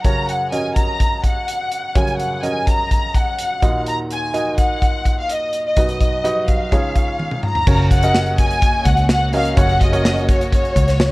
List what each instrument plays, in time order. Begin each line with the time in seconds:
0.05 upright piano F#2 C#3 C#4 F#4 A#4 C#5, violin section A#5, kick, closed hi-hat
0.29 violin section F#5, closed hi-hat
0.52 upright piano C#4 F#4 A#4 D#5, violin section G#5, closed hi-hat
0.76 violin section A#5, kick, closed hi-hat
1.00 kick, closed hi-hat
1.24 violin section F#5, kick, closed hi-hat
1.48 closed hi-hat
1.72 closed hi-hat
1.95 upright piano F#2 C#3 C#4 F#4 A#4 C#5, violin section G#5, kick, closed hi-hat
2.07 closed hi-hat
2.20 violin section F#5, closed hi-hat
2.43 upright piano C#4 F#4 A#4 D#5, violin section G#5, closed hi-hat
2.67 violin section A#5, kick, closed hi-hat
2.91 kick, closed hi-hat
3.15 violin section F#5, kick, closed hi-hat
3.39 closed hi-hat
3.62 upright piano D#2 A#2 D#4 F#4 A#4 D#5, kick, closed hi-hat
3.86 violin section A#5, closed hi-hat
4.11 violin section G#5, closed hi-hat
4.34 upright piano D#4 F#4 A#4 D#5, closed hi-hat
4.58 violin section F#5, kick, closed hi-hat
4.82 kick, closed hi-hat
5.05 kick, closed hi-hat
5.19 violin section F5
5.29 violin section D#5, closed hi-hat
5.53 closed hi-hat
5.66 violin section D#5
5.76 upright piano B1 F#2 D#4 F#4 B4 D#5, kick, closed hi-hat
5.88 closed hi-hat
6.00 kick, closed hi-hat
6.24 upright piano D#4 F#4 B4 D#5, closed hi-hat
6.48 violin section F5, kick, closed hi-hat
6.72 upright piano C#2 G#2 C#4 F4 G#4 C#5, kick, closed hi-hat
6.95 kick, closed hi-hat
7.19 high tom
7.31 mid tom
7.43 violin section A#5, mid tom
7.55 floor tom
7.67 picked electric bass F#1, upright piano C#3 C#4 F#4 A#4 C#5, string section A#3 C#4 F#4, kick, crash
7.91 violin section F#5, kick, closed hi-hat
8.03 upright piano C#4 F#4 A#4 D#5, closed hi-hat
8.14 snare
8.26 closed hi-hat
8.38 violin section G#5, kick, closed hi-hat
8.51 closed hi-hat
8.62 kick, closed hi-hat
8.85 picked electric bass C#2, violin section F#5, kick, closed hi-hat
8.97 closed hi-hat
9.09 violin section F#5, snare
9.33 upright piano C#4 F#4 A#4 D#5, violin section F5, open hi-hat
9.45 closed hi-hat
9.57 picked electric bass F#1, upright piano C#3 C#4 F#4 A#4 C#5, violin section F#5, kick, closed hi-hat
9.69 closed hi-hat
9.81 violin section D#5, kick, closed hi-hat
9.93 upright piano C#4 F#4 A#4 C#5, closed hi-hat
10.05 snare
10.18 closed hi-hat
10.29 violin section C#5, kick, closed hi-hat
10.41 closed hi-hat
10.53 violin section C#5, kick, closed hi-hat
10.65 closed hi-hat
10.76 picked electric bass C#2, kick, closed hi-hat
10.88 snare, closed hi-hat
11.00 snare